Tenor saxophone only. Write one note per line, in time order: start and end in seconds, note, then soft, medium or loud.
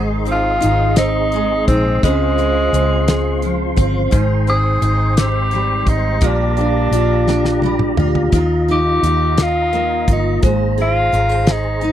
0.31 0.96 F4 loud
0.97 1.64 D#4 loud
1.68 2.01 C4 loud
2.04 3.74 G#3 loud
4.49 5.19 G#4 loud
5.18 5.90 G4 loud
5.89 6.28 D#4 medium
6.26 7.99 D4 loud
8.71 9.44 G4 loud
9.42 10.10 F4 loud
10.12 10.43 D#4 medium
10.82 11.53 F4 loud
11.52 11.92 D#4 loud